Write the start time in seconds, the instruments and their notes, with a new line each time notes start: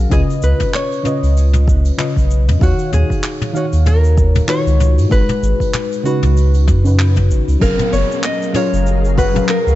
Already playing: fm electric piano F#3 C#4 G#4 A#4 F5
0.09 sub bass C#2, fm electric piano C#3 C#4 F4 B4 D#5, nylon-string guitar G#4, kick, mid tom, open hi-hat, shaker
0.30 open hi-hat, shaker
0.42 sub bass C#2, nylon-string guitar B4, shaker
0.60 kick, mid tom, open hi-hat, shaker
0.74 nylon-string guitar C#5, clap, open hi-hat, shaker
0.91 open hi-hat, shaker
1.03 fm electric piano C#3 C#4 F4 B4 D#5, mid tom, shaker
1.23 sub bass C#2, open hi-hat, shaker
1.37 open hi-hat, shaker
1.53 mid tom, shaker
1.68 kick, shaker
1.85 open hi-hat, shaker
1.97 fm electric piano C#3 C#4 F4 B4 D#5, clap, mid tom, shaker
2.16 sub bass B1, kick, open hi-hat, shaker
2.31 shaker
2.47 sub bass F2, mid tom, open hi-hat, shaker
2.59 sub bass D#2, fm electric piano D#3 D#4 F#4 C#5 F5, nylon-string guitar F#4, kick, open hi-hat, shaker
2.79 open hi-hat, shaker
2.93 sub bass D#2, nylon-string guitar G#4, mid tom, shaker
3.10 kick, open hi-hat, shaker
3.24 clap, open hi-hat, shaker
3.42 mid tom, open hi-hat, shaker
3.53 fm electric piano D#3 D#4 F#4 C#5 F5, nylon-string guitar F#4, shaker
3.73 sub bass D#2, open hi-hat, shaker
3.86 nylon-string guitar A#4, mid tom, open hi-hat, shaker
4.04 shaker
4.18 kick, shaker
4.35 mid tom, open hi-hat, shaker
4.48 fm electric piano D#3 D#4 F4 F#4 C#5, nylon-string guitar C#5, clap, shaker
4.66 sub bass C#2, open hi-hat, shaker
4.80 mid tom, shaker
4.97 sub bass G#2, open hi-hat, shaker
5.09 sub bass G#1, fm electric piano G#3 D#4 F#4 G#4 B4, nylon-string guitar B4, kick, open hi-hat, shaker
5.29 mid tom, open hi-hat, shaker
5.42 sub bass G#1, shaker
5.60 kick, open hi-hat, shaker
5.74 clap, mid tom, shaker
5.91 open hi-hat, shaker
6.03 fm electric piano C#3 C#4 D#4 F#4 B4, nylon-string guitar F#4, shaker
6.22 sub bass C#2, mid tom, open hi-hat, shaker
6.37 open hi-hat, shaker
6.54 open hi-hat, shaker
6.68 sub bass F#2, kick, mid tom, shaker
6.83 fm electric piano C#3 C#4 D#4 F#4 B4, open hi-hat, shaker
6.99 clap, shaker
7.16 kick, mid tom, open hi-hat, shaker
7.30 sub bass G#1, shaker
7.48 sub bass C#2, open hi-hat, shaker
7.60 sub bass F#1, fm electric piano F#3 C#4 G#4 A#4 F5, ambient pad F#3 G#4 F5 A#5, nylon-string guitar A#4, kick, crash, downlifter, shaker
7.79 mid tom, shaker
7.92 sub bass F#1, nylon-string guitar C#5, open hi-hat, shaker
8.11 shaker
8.24 nylon-string guitar D#5, clap, shaker
8.42 shaker
8.53 fm electric piano F#3 C#4 G#4 A#4, steel pan F4, nylon-string guitar C#5, mid tom, open hi-hat, shaker
8.57 fm electric piano F5
8.73 sub bass F#1, shaker
8.86 shaker
9.05 shaker
9.17 steel pan F#4, nylon-string guitar B4, kick, open hi-hat, shaker
9.33 fm electric piano F#3 C#4 G#4 A#4 F5, mid tom, shaker
9.49 nylon-string guitar A#4, clap, shaker
9.67 sub bass C#2, shaker